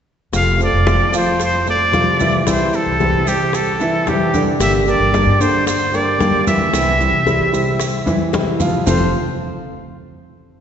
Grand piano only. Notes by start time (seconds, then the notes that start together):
0.60 A3 A4 C5
1.14 F3 F4 F5
1.67 A3 A4 C5
2.21 E3 E4 E5
2.47 E3 E4 E5
3.01 G3 G4 C5
3.28 G3 G4 C5
3.81 E3 E4 E5
4.08 G3 G4 C5
4.34 D3 D4 D5
4.87 G3 G4 A#4
5.41 D3 D4 D5
5.94 G3 G4 A#4
6.47 E3 E4 E5
6.74 E3 E4 E5
7.27 G3 G4 C5
7.53 G3 G4 C5
8.06 E3 E4 E5
8.33 G3 G4 C5
8.60 F3 F4 F5
8.86 F3 C4 F4 A4 C5 F5